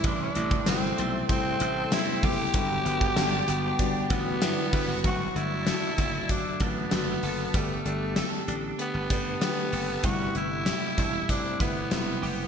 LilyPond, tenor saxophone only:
\new Staff \with { instrumentName = "Tenor saxophone" } { \time 4/4 \key g \major \tempo 4 = 96 d'16 d'8. c'4 c'4 e'8 g'8~ | g'2~ g'8 b4. | fis'8 e'4. d'8 b4. | a8 a4 r8 b8 b4. |
fis'8 e'4. d'8 b4. | }